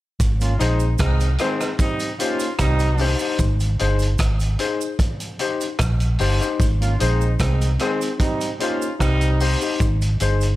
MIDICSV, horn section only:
0, 0, Header, 1, 2, 480
1, 0, Start_track
1, 0, Key_signature, -4, "major"
1, 0, Tempo, 800000
1, 117, Time_signature, 4, 2, 24, 8
1, 6337, End_track
2, 0, Start_track
2, 0, Title_t, "Horn section"
2, 0, Program_c, 0, 61
2, 241, Note_on_c, 0, 58, 75
2, 241, Note_on_c, 0, 61, 76
2, 241, Note_on_c, 0, 65, 81
2, 333, Note_off_c, 0, 58, 0
2, 333, Note_off_c, 0, 61, 0
2, 333, Note_off_c, 0, 65, 0
2, 350, Note_on_c, 0, 56, 75
2, 351, Note_on_c, 0, 63, 84
2, 352, Note_on_c, 0, 60, 78
2, 545, Note_off_c, 0, 56, 0
2, 546, Note_off_c, 0, 60, 0
2, 546, Note_off_c, 0, 63, 0
2, 588, Note_on_c, 0, 60, 82
2, 588, Note_on_c, 0, 63, 87
2, 589, Note_on_c, 0, 56, 85
2, 784, Note_off_c, 0, 56, 0
2, 784, Note_off_c, 0, 60, 0
2, 784, Note_off_c, 0, 63, 0
2, 832, Note_on_c, 0, 56, 80
2, 835, Note_on_c, 0, 51, 82
2, 835, Note_on_c, 0, 60, 87
2, 1026, Note_off_c, 0, 56, 0
2, 1028, Note_off_c, 0, 51, 0
2, 1028, Note_off_c, 0, 60, 0
2, 1071, Note_on_c, 0, 55, 86
2, 1074, Note_on_c, 0, 60, 84
2, 1074, Note_on_c, 0, 63, 97
2, 1266, Note_off_c, 0, 55, 0
2, 1267, Note_off_c, 0, 60, 0
2, 1268, Note_off_c, 0, 63, 0
2, 1311, Note_on_c, 0, 65, 97
2, 1312, Note_on_c, 0, 58, 80
2, 1312, Note_on_c, 0, 61, 86
2, 1506, Note_off_c, 0, 58, 0
2, 1506, Note_off_c, 0, 61, 0
2, 1506, Note_off_c, 0, 65, 0
2, 1551, Note_on_c, 0, 60, 106
2, 1552, Note_on_c, 0, 63, 114
2, 1554, Note_on_c, 0, 55, 106
2, 1899, Note_off_c, 0, 60, 0
2, 1899, Note_off_c, 0, 63, 0
2, 1900, Note_off_c, 0, 55, 0
2, 4078, Note_on_c, 0, 58, 75
2, 4080, Note_on_c, 0, 61, 74
2, 4082, Note_on_c, 0, 65, 89
2, 4172, Note_off_c, 0, 58, 0
2, 4173, Note_off_c, 0, 61, 0
2, 4174, Note_off_c, 0, 65, 0
2, 4192, Note_on_c, 0, 60, 81
2, 4192, Note_on_c, 0, 63, 87
2, 4193, Note_on_c, 0, 56, 80
2, 4387, Note_off_c, 0, 60, 0
2, 4387, Note_off_c, 0, 63, 0
2, 4388, Note_off_c, 0, 56, 0
2, 4433, Note_on_c, 0, 63, 89
2, 4435, Note_on_c, 0, 56, 82
2, 4437, Note_on_c, 0, 60, 88
2, 4628, Note_off_c, 0, 63, 0
2, 4629, Note_off_c, 0, 56, 0
2, 4630, Note_off_c, 0, 60, 0
2, 4672, Note_on_c, 0, 51, 76
2, 4672, Note_on_c, 0, 60, 86
2, 4673, Note_on_c, 0, 56, 81
2, 4867, Note_off_c, 0, 51, 0
2, 4867, Note_off_c, 0, 56, 0
2, 4867, Note_off_c, 0, 60, 0
2, 4912, Note_on_c, 0, 55, 87
2, 4913, Note_on_c, 0, 60, 86
2, 4913, Note_on_c, 0, 63, 97
2, 5107, Note_off_c, 0, 55, 0
2, 5107, Note_off_c, 0, 60, 0
2, 5108, Note_off_c, 0, 63, 0
2, 5153, Note_on_c, 0, 61, 84
2, 5155, Note_on_c, 0, 58, 88
2, 5155, Note_on_c, 0, 65, 96
2, 5347, Note_off_c, 0, 61, 0
2, 5348, Note_off_c, 0, 58, 0
2, 5349, Note_off_c, 0, 65, 0
2, 5396, Note_on_c, 0, 60, 103
2, 5397, Note_on_c, 0, 55, 99
2, 5397, Note_on_c, 0, 63, 114
2, 5741, Note_off_c, 0, 60, 0
2, 5742, Note_off_c, 0, 55, 0
2, 5742, Note_off_c, 0, 63, 0
2, 6337, End_track
0, 0, End_of_file